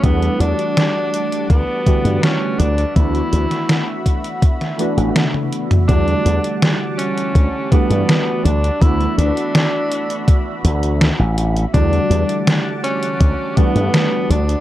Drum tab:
HH |xxxxx-xxx-xxx-xx|xxxxx-xxxxxxx-xx|xxxxx-xxx-xxx-xx|xxxxx-xxx-xxx-xx|
SD |----o-------o---|---oo----o--o---|----o-------o---|----o-------o---|
T1 |----------------|------------oo--|----------------|----------------|
T2 |----------------|---------------o|----------------|----------------|
BD |o-------o-o-----|o-----o-o-------|o-------o-o-----|o-------o-------|

HH |xxxxx-xxx-xxx-xx|
SD |----o-------o---|
T1 |----------------|
T2 |----------------|
BD |o-------o-o-----|